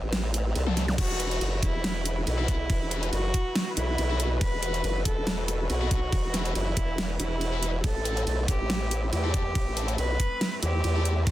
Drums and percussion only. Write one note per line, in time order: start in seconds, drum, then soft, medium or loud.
0.13 snare loud
0.13 ride medium
0.34 closed hi-hat medium
0.55 ride soft
0.67 high tom medium
0.77 snare medium
0.77 closed hi-hat medium
0.88 snare medium
0.98 kick loud
0.98 crash medium
0.98 ride medium
1.20 closed hi-hat medium
1.31 closed hi-hat soft
1.41 ride soft
1.63 kick medium
1.63 closed hi-hat medium
1.84 snare loud
1.84 ride medium
2.06 closed hi-hat medium
2.27 ride soft
2.48 kick loud
2.48 closed hi-hat medium
2.70 kick loud
2.70 ride medium
2.91 closed hi-hat medium
3.03 closed hi-hat soft
3.13 ride soft
3.34 kick medium
3.34 closed hi-hat medium
3.55 snare loud
3.55 ride medium
3.77 closed hi-hat medium
3.98 ride soft
4.20 closed hi-hat medium
4.41 kick loud
4.41 ride medium
4.63 closed hi-hat medium
4.74 closed hi-hat soft
4.84 ride soft
5.05 kick medium
5.05 closed hi-hat medium
5.27 snare loud
5.27 ride medium
5.48 closed hi-hat medium
5.70 ride soft
5.91 kick loud
5.91 closed hi-hat medium
6.12 kick loud
6.12 ride medium
6.34 snare medium
6.34 closed hi-hat medium
6.45 closed hi-hat soft
6.55 ride soft
6.77 kick medium
6.77 closed hi-hat medium
6.98 snare loud
6.98 ride medium
7.20 closed hi-hat medium
7.41 ride soft
7.63 closed hi-hat medium
7.84 kick loud
7.84 ride medium
8.05 closed hi-hat medium
8.17 closed hi-hat soft
8.27 ride soft
8.48 kick medium
8.48 closed hi-hat medium
8.70 snare loud
8.70 ride medium
8.91 closed hi-hat medium
9.13 ride soft
9.34 kick loud
9.34 closed hi-hat medium
9.55 kick loud
9.55 ride medium
9.77 closed hi-hat medium
9.88 closed hi-hat soft
9.98 ride soft
10.20 kick medium
10.20 closed hi-hat medium
10.41 snare loud
10.41 ride medium
10.63 closed hi-hat medium
10.84 ride soft
11.05 closed hi-hat medium
11.27 kick loud
11.27 ride medium